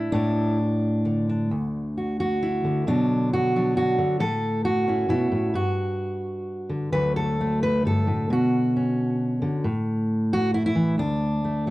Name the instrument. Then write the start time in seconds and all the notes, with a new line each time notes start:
steel-string acoustic guitar
Already playing: A2 D4 E4
0.12 A2 D4
1.05 D3
1.29 D4
1.51 D2
1.98 F#4
2.20 F#4
2.43 E4
2.64 D3
2.87 B2 D3 F#3 D4
3.33 F#4
3.56 F#3 D4
3.77 F#4
3.98 D3
4.20 A2 A4
4.65 F#4
4.88 C#4 E4
5.09 B2 E4
5.32 A2
5.54 G2 F#4
6.69 D3
6.92 D2 D3 F#3 A3 B4
7.16 A4
7.41 A3
7.63 B4
7.85 G2 A4
8.07 A2
8.30 B2 F#4
8.76 C#4
9.42 D3
9.64 A2
10.33 F#4
10.54 E4
10.66 E4
10.75 E3
10.98 D2 D4
11.44 A3
11.67 F#3